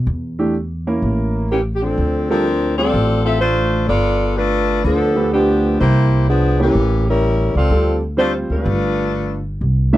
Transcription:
0.07 upright bass E2
0.39 upright piano E3 A3 D4 G4
0.87 upright piano A#3 C#4 E4 A#4
1.02 upright bass A1
1.51 saxophone section E3 A#3 C#4 G4
1.75 saxophone section G4
1.83 saxophone section F3 C4 D4 A4
1.98 upright bass D2
2.30 saxophone section F3 C4 D4 A#4, upright piano G3 C4 F4 A4
2.77 upright piano G3 C4 F4 G4, saxophone section C4 F4 A4 D5
2.94 upright bass A1
3.25 saxophone section C4 F4 A4 E5
3.40 saxophone section A3 D4 F4 C5
3.88 upright bass G1, saxophone section B3 F4 A4 D5
4.36 saxophone section A3 D4 F4 B4
4.84 upright bass D2, saxophone section F3 B3 D4 A4
5.15 upright piano A3 D4 G4 B4
5.33 saxophone section F3 B3 D4 G4
5.80 upright bass C2, saxophone section A#3 E4 G4 C5
6.29 saxophone section F3 B3 D4 G#4
6.59 saxophone section E3 A#3 C#4 G4, upright piano A#3 C#4 E4 G4
6.75 upright bass A1
7.09 saxophone section G3 C#4 E4 A#4
7.55 upright bass C#2, saxophone section C4 F4 A4 D5
7.70 upright bass D2, upright piano G3 C4 F4 A4
8.17 upright piano G3 C4 F4 C5, saxophone section A3 D4 F4 C5
8.50 upright bass D2, saxophone section A3 D4 F4 B4
8.66 upright bass G1
9.61 upright bass C2
9.93 upright piano E3 A3 A#3 D4 E5

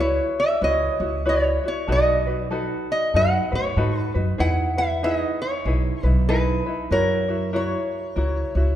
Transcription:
Already playing: upright bass C#2
0.00 ukulele E4 F#4 B4 C#5, resonator guitar played with a steel bar C#5
0.40 resonator guitar played with a steel bar E5
0.61 upright bass C#2, ukulele E4 F#4 B4 C#5, resonator guitar played with a steel bar D#5
1.00 upright bass C#2, ukulele E4 F#4 C#5
1.25 ukulele E4 F#4 B4 C#5, resonator guitar played with a steel bar C#5
1.64 ukulele E4 F#4 C#5
1.68 resonator guitar played with a steel bar C#5
1.87 upright bass B1, ukulele D#4 F#4 A4 B4
1.92 resonator guitar played with a steel bar D#5
2.27 ukulele D#4 F#4 B4
2.51 ukulele D#4 F#4 A4 B4
2.92 resonator guitar played with a steel bar D#5
3.14 upright bass F#2, ukulele D#4 F#4 A4 B4, resonator guitar played with a steel bar F#5
3.52 upright bass A2, ukulele D#4 F#4 B4, resonator guitar played with a steel bar C#5
3.77 upright bass G#2, ukulele D#4 F#4 A4 B4
3.99 resonator guitar played with a steel bar B4
4.14 upright bass F#2, ukulele D#4 F#4 B4
4.38 upright bass E2, ukulele D#4 E4 G#4 B4, resonator guitar played with a steel bar F#5
4.77 ukulele E4 B4, resonator guitar played with a steel bar E5
5.03 ukulele D#4 E4 G#4 B4, resonator guitar played with a steel bar D#5
5.42 resonator guitar played with a steel bar C#5
5.65 upright bass B1, ukulele D#4 E4 G#4 B4
6.03 upright bass B1, ukulele D#4 E4 B4, resonator guitar played with a steel bar B4
6.29 ukulele D#4 E4 G#4 B4, resonator guitar played with a steel bar B4
6.66 ukulele D#4 E4 B4
6.91 upright bass F#2, ukulele E4 F#4 A#4 C#5, resonator guitar played with a steel bar A#4
7.28 ukulele E4 F#4 C#5
7.53 ukulele E4 F#4 A#4 C#5, resonator guitar played with a steel bar C#5
8.16 upright bass C#2, ukulele E4 F#4 A#4 C#5
8.55 upright bass C#2, ukulele E4 F#4 C#5

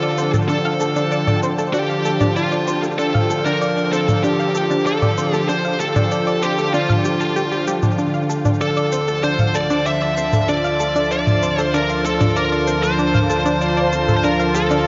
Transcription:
Already playing: analog synth pad D3 F3 F4 A5, synth texture D4 G5, lead electric guitar A4
0.02 synth arpeggio sound D5, cabasa
0.18 synth arpeggio sound C5, cabasa
0.34 synth arpeggio sound A4, high tom, cabasa
0.48 synth arpeggio sound D4, lead electric guitar A4, cabasa
0.65 synth arpeggio sound F5, cabasa
0.80 synth arpeggio sound A4, cabasa
0.96 synth arpeggio sound D4, cabasa
1.12 synth arpeggio sound D5, cabasa
1.27 synth arpeggio sound D5, high tom, cabasa
1.43 synth arpeggio sound C5, cabasa
1.58 synth arpeggio sound A4, cabasa
1.73 synth arpeggio sound D4, lead electric guitar G4, cabasa
1.90 synth arpeggio sound F5, cabasa
2.05 synth arpeggio sound A4, cabasa
2.21 synth arpeggio sound D4, high tom, cabasa
2.36 lead electric guitar F4, synth arpeggio sound D5, cabasa
2.52 synth arpeggio sound D5, cabasa
2.68 synth arpeggio sound C5, cabasa
2.83 synth arpeggio sound A4, cabasa
2.98 synth arpeggio sound D4, lead electric guitar A4, cabasa
3.14 synth arpeggio sound F5, high tom, cabasa
3.30 synth arpeggio sound A4, cabasa
3.45 synth arpeggio sound D4, lead electric guitar A#4, cabasa
3.61 synth arpeggio sound D5, cabasa
3.77 synth arpeggio sound D5, cabasa
3.92 lead electric guitar A4, synth arpeggio sound C5, cabasa
4.08 synth arpeggio sound A4, high tom, cabasa
4.23 synth arpeggio sound D4, lead electric guitar G4, cabasa
4.40 synth arpeggio sound F5, cabasa
4.55 synth arpeggio sound A4, cabasa
4.71 synth arpeggio sound D4, cabasa
4.86 lead electric guitar A4, synth arpeggio sound D5, cabasa
5.02 synth arpeggio sound D5, high tom, cabasa
5.18 synth arpeggio sound C5, cabasa
5.34 lead electric guitar G4, synth arpeggio sound A4, cabasa
5.49 synth arpeggio sound D4, lead electric guitar C5, cabasa
5.65 synth arpeggio sound F5, cabasa
5.80 lead electric guitar A4, synth arpeggio sound A4, cabasa
5.96 synth arpeggio sound D4, high tom, cabasa
6.11 synth arpeggio sound D5, cabasa
6.27 synth arpeggio sound D5, cabasa
6.42 lead electric guitar G4, synth arpeggio sound C5, cabasa
6.58 synth arpeggio sound A4, cabasa
6.74 synth arpeggio sound D4, lead electric guitar F4, cabasa
6.89 synth arpeggio sound F5, high tom, cabasa
7.05 synth arpeggio sound G4, cabasa
7.21 synth arpeggio sound A5, cabasa
7.36 synth arpeggio sound G4, cabasa
7.52 synth arpeggio sound G4, cabasa
7.67 synth arpeggio sound G4, cabasa
7.83 synth arpeggio sound D4, high tom, cabasa
7.98 sub bass D2, analog synth pad D3, synth arpeggio sound D4, synth texture D4 D5, cabasa
8.14 synth arpeggio sound F5, cabasa
8.20 analog synth pad F3
8.29 synth arpeggio sound A4, cabasa
8.45 synth arpeggio sound D4, high tom, cabasa
8.61 lead electric guitar A4, synth arpeggio sound D5, cabasa
8.77 synth arpeggio sound D5, cabasa
8.92 synth arpeggio sound C5, cabasa
9.08 synth arpeggio sound A4, cabasa
9.23 synth arpeggio sound D4, lead electric guitar C5, cabasa
9.32 analog synth pad F4
9.39 synth arpeggio sound F5, analog synth pad A5, high tom, cabasa
9.55 synth arpeggio sound A4, lead electric guitar D5, cabasa
9.70 synth arpeggio sound D4, cabasa
9.86 synth arpeggio sound D5, lead electric guitar E5, cabasa
10.02 synth arpeggio sound D5, cabasa
10.17 synth arpeggio sound C5, cabasa
10.33 synth arpeggio sound A4, high tom, cabasa
10.48 synth arpeggio sound D4, lead electric guitar D5, cabasa
10.64 synth arpeggio sound F5, cabasa
10.80 synth arpeggio sound A4, cabasa
10.96 synth arpeggio sound D4, cabasa
11.11 synth arpeggio sound D5, lead electric guitar D5, cabasa
11.27 synth arpeggio sound D5, high tom, cabasa
11.43 synth arpeggio sound C5, cabasa
11.58 synth arpeggio sound A4, lead electric guitar C5, cabasa
11.74 synth arpeggio sound D4, lead electric guitar A#4, cabasa
11.90 synth arpeggio sound F5, cabasa
12.05 synth arpeggio sound A4, lead electric guitar A4, cabasa
12.21 synth arpeggio sound D4, high tom, cabasa
12.36 lead electric guitar A#4, synth arpeggio sound D5, cabasa
12.52 synth arpeggio sound D5, cabasa
12.67 synth arpeggio sound C5, cabasa
12.83 synth arpeggio sound A4, lead electric guitar C5, cabasa
12.99 synth arpeggio sound D4, cabasa
13.15 synth arpeggio sound F5, high tom, cabasa
13.30 synth arpeggio sound A4, cabasa
13.46 synth arpeggio sound D4, cabasa
13.61 synth arpeggio sound D5, cabasa
13.77 synth arpeggio sound D5, cabasa
13.93 synth arpeggio sound C5, cabasa
14.08 synth arpeggio sound A4, high tom, cabasa
14.17 lead electric guitar C5
14.24 synth arpeggio sound D4, lead electric guitar A#4, cabasa
14.40 synth arpeggio sound F5, cabasa
14.55 synth arpeggio sound A4, lead electric guitar A4, cabasa
14.71 synth arpeggio sound D4, cabasa

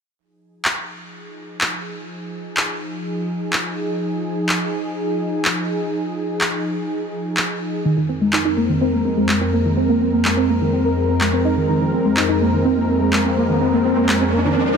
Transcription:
0.17 analog synth pad F3 D#4 G#4
0.65 clap
1.61 clap
2.57 clap
3.53 clap
4.49 clap
5.45 clap
6.41 clap
7.37 clap
7.85 analog synth pad F2 G#3 C4 A#4, synth arpeggio sound D#3
7.97 synth arpeggio sound D#3
8.09 synth arpeggio sound C4
8.21 synth arpeggio sound G#3
8.33 synth arpeggio sound D#4, clap
8.45 synth arpeggio sound D#4
8.57 synth arpeggio sound A#3
8.69 synth arpeggio sound D#3
8.81 synth arpeggio sound C4
8.93 synth arpeggio sound A#3
9.05 synth arpeggio sound C4
9.17 synth arpeggio sound G#3
9.29 synth arpeggio sound G#3, clap
9.41 synth arpeggio sound C4
9.53 synth arpeggio sound A#3
9.65 synth arpeggio sound D#3
9.77 synth arpeggio sound C4
9.89 synth arpeggio sound A#3
10.01 synth arpeggio sound C4
10.13 synth arpeggio sound A#3
10.25 synth arpeggio sound G#3, clap
10.37 synth arpeggio sound C4
10.49 synth arpeggio sound A#3
10.61 synth arpeggio sound D#3
10.73 synth arpeggio sound C4
10.85 synth arpeggio sound A#4
10.97 synth arpeggio sound C4
11.09 synth arpeggio sound C4
11.21 synth arpeggio sound G#3, clap
11.33 synth arpeggio sound C4
11.45 synth arpeggio sound D#4
11.57 synth arpeggio sound D#3
11.69 synth arpeggio sound D#3, riser
11.81 synth arpeggio sound D#3
11.93 synth arpeggio sound C4
12.05 synth arpeggio sound G#3
12.17 synth arpeggio sound D#4, clap
12.29 synth arpeggio sound D#4
12.41 synth arpeggio sound A#3
12.53 synth arpeggio sound D#3
12.65 synth arpeggio sound C4
12.77 synth arpeggio sound A#3
12.89 synth arpeggio sound C4
13.01 synth arpeggio sound G#3
13.13 synth arpeggio sound G#3, clap
13.25 synth arpeggio sound C4
13.37 synth arpeggio sound A#3
13.49 synth arpeggio sound D#3
13.61 synth arpeggio sound C4
13.73 synth arpeggio sound A#3
13.85 synth arpeggio sound C4
13.97 synth arpeggio sound A#3
14.09 synth arpeggio sound G#3, clap
14.21 synth arpeggio sound C4
14.33 synth arpeggio sound A#3
14.45 synth arpeggio sound D#3
14.57 synth arpeggio sound C4
14.69 synth arpeggio sound A#4

